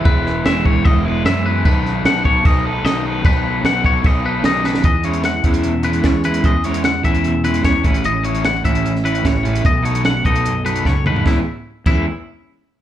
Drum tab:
CC |x---x---x---x---|x---x---x---x---|x---x---x---x---|----------------|
HH |----------------|----------------|----------------|x-xxx-xxx-xxx-xx|
SD |--o-o-------o---|--o-o-------o---|----o-------o-oo|----o-------o---|
T2 |----------------|----------------|----------------|----------------|
FT |----------------|----------------|----------------|----------------|
BD |o-----o-o-------|o-----o-o-------|o-----o-o-------|o-----o-----o---|

CC |----------------|----------------|----------------|------x---------|
HH |x-xxx-xxx-xxx-xx|x-xxx-xxx-xxx-xx|x-xxx-xxx-xx----|----------------|
SD |----o-------o---|----o----o--o---|----o-------o---|o---------------|
T2 |----------------|----------------|--------------o-|----------------|
FT |----------------|----------------|---------------o|----------------|
BD |o-----o-----o-o-|------o-----o---|o-----o-----o---|o-----o---------|